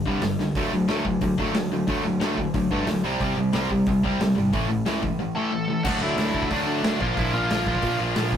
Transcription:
0.06 C2 G2 D3 G3, kick
0.22 G1 G2 D3, snare, open hi-hat
0.39 C#2 G2 D3, snare
0.55 D2 D3 F#3 A3, kick, open hi-hat
0.73 D2 D3 F#3
0.88 D2 D3 F#3 A3, snare, open hi-hat
1.05 D2 D3 F#3, kick
1.21 D2 D3 F#3, kick, open hi-hat
1.38 D2 D3 F#3 A3, kick
1.54 D2 D3 F#3, snare, open hi-hat
1.71 D2 D3 F#3
1.87 D2 D3 F#3 A3, kick, open hi-hat
2.04 D2 D3 F#3
2.20 D2 D3 F#3 A3, snare, open hi-hat
2.37 D3 F#3, kick
2.54 D2 D3 F#3, kick, open hi-hat
2.71 G2 D3 F#3 A3, kick
2.87 D2 D3 F#3, snare, open hi-hat
3.03 C2 C3 G3 C4
3.20 C2 C3 G3 C4, kick, open hi-hat
3.37 C2 C3 G3
3.53 C2 C3 G3 C4, snare, open hi-hat
3.70 C2 C3 G3, kick
3.86 C2 C3 G3, kick, open hi-hat
4.03 C2 C3 G3 C4, kick
4.20 C2 C3 G3, snare, open hi-hat
4.35 G#1 C3 G3
4.52 A1 A2 E3 A3, kick, open hi-hat
4.69 A1 A2 E3
4.85 C#2 A2 E3 A3, snare, open hi-hat
5.02 A2 E3, kick
5.19 A2 E3
5.35 A2 E3 A3 A4 A5
5.51 A2 E3
5.68 A2 E3
5.84 D2 D3 F#3 A3 D4 F#4 F#5, kick, crash
6.02 D2 E4 E5
6.17 D2, snare, open hi-hat
6.34 D2 D3 F#3 A3 D4 F#4, kick
6.43 kick
6.50 D2 D3 F#3 A3 D4 D5, kick, open hi-hat
6.67 D2
6.83 D2 D3 F#3 A3 D4 F#4, snare, open hi-hat
7.00 A#1 A#2 F3 A#3 D4 F4 F5, kick
7.17 A#1 E4 E5, kick, open hi-hat
7.34 A#1 F4 F5
7.49 A#1 A#2 F3 A#3 D4 F4, snare, open hi-hat
7.66 A#1 A#2 F3 A#3 D4, kick
7.75 kick
7.82 A#2, kick, open hi-hat
7.98 A#1 A#2 F3 A#3 D4 F4
8.16 A#1, snare, open hi-hat
8.32 E1, kick

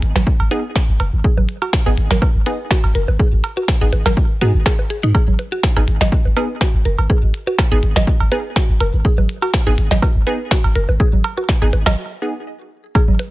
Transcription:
0.02 G#1, closed hi-hat
0.15 G#1, snare, low bongo, low conga
0.27 kick
0.40 G#1, cowbell
0.51 B3 D#4 G#4, closed hi-hat, low bongo
0.76 kick, snare
0.89 G#1
1.00 F#1, closed hi-hat, cowbell, low bongo
1.13 G#1
1.24 G#4, kick
1.37 G#1, low bongo, low conga
1.49 closed hi-hat
1.62 F#4, cowbell
1.73 kick, snare
1.86 G#1 B3 D#4 G#4, low bongo
1.98 G#1, closed hi-hat
2.11 G#1 A#4, snare, low conga
2.22 kick, cowbell, low bongo
2.35 G#1
2.46 B3 D#4 G#4 B4, closed hi-hat
2.71 F#4, kick, snare, low bongo
2.84 G#1, cowbell
2.95 F#1 A#4, closed hi-hat
3.08 G#1, low bongo
3.19 G#4, kick
3.33 G#1
3.44 closed hi-hat, cowbell
3.57 F#4, low bongo
3.68 kick, snare
3.81 G#1 B3 D#4 G#4
3.93 G#1, closed hi-hat, low bongo
4.06 G#1 A#4, snare, cowbell, low conga
4.17 kick
4.41 G#2 B3 D#4 F#4 G#4, closed hi-hat, low bongo
4.55 G#1
4.66 G#4, kick, snare, cowbell
4.79 low bongo
4.90 G#4, closed hi-hat
5.03 G#2 D#4
5.15 G#4, kick, cowbell
5.28 G#1, low conga
5.39 closed hi-hat, low bongo
5.52 F#4
5.63 kick, snare
5.76 G#1 B3 D#4 G#4, cowbell, low bongo
5.88 G#1, closed hi-hat
6.01 G#1 D#5, snare, low conga
6.12 kick
6.25 G#1, low bongo
6.37 B3 D#4 G#4 B4, closed hi-hat, cowbell
6.61 F#4, kick, snare, low bongo
6.74 G#1
6.85 F#1 A#4, closed hi-hat
6.98 G#1, cowbell
7.10 G#4, kick, low bongo
7.23 G#1
7.34 closed hi-hat
7.47 F#4, low bongo
7.58 kick, snare, cowbell
7.72 G#1 B3 D#4 G#4
7.83 G#1, closed hi-hat
7.96 G#1 D#5, snare, low bongo, low conga
8.07 kick
8.20 G#1, cowbell
8.32 B3 D#4 G#4 B4, closed hi-hat, low bongo
8.56 F#4, kick, snare
8.69 G#1
8.80 F#1 A#4, closed hi-hat, cowbell, low bongo
8.94 G#1
9.05 G#4, kick
9.18 G#1, low bongo, low conga
9.29 closed hi-hat
9.42 F#4, cowbell
9.54 kick, snare
9.67 G#1 B3 D#4 G#4, low bongo
9.78 G#1, closed hi-hat
9.91 G#1 D#5, snare, low conga
10.02 kick, cowbell, low bongo
10.15 G#1
10.27 B3 D#4 G#4 B4, closed hi-hat
10.51 F#4, kick, snare, low bongo
10.64 G#1, cowbell
10.75 F#1 A#4, closed hi-hat
10.89 G#1, low bongo
11.00 G#4, kick
11.13 G#1, low conga
11.24 closed hi-hat, cowbell
11.37 F#4, low bongo
11.49 kick, snare
11.62 G#1 B3 D#4 G#4
11.73 G#1, closed hi-hat, low bongo
11.86 G#1 D#5, snare, cowbell, low conga
12.22 B3 D#4 G#4
12.95 D#4 G#4, kick, cowbell, shaker
13.08 G#1, low conga
13.19 closed hi-hat, low bongo

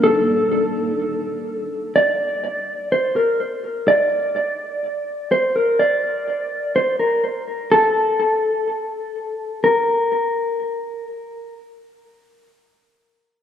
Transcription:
0.04 A4
1.96 D5
2.92 C5
3.16 A#4
3.88 D5
5.32 C5
5.56 A#4
5.79 D5
6.76 C5
7.00 A#4
7.72 A4
9.64 A#4

